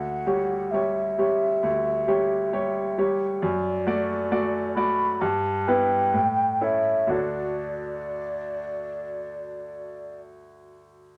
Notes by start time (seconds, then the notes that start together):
Already playing: D2 F#5
0.26 G3 G4 C#5
0.71 G3 G4 C#5 E5
1.18 G3 G4 C#5
1.63 D2
2.08 G3 G4 C#5
2.53 G3 G4 C#5
2.98 G3 G4 C#5
3.42 F#2 D5
3.87 A3 F#4 D5
4.31 A3 F#4 D5
4.75 A3 F#4 D5 B5
5.21 G2 A5
5.67 B3 E4 B4 G5
6.13 A2
6.61 C#4 E4 A4 E5
7.07 D2 D4 F#4 A4
7.13 D5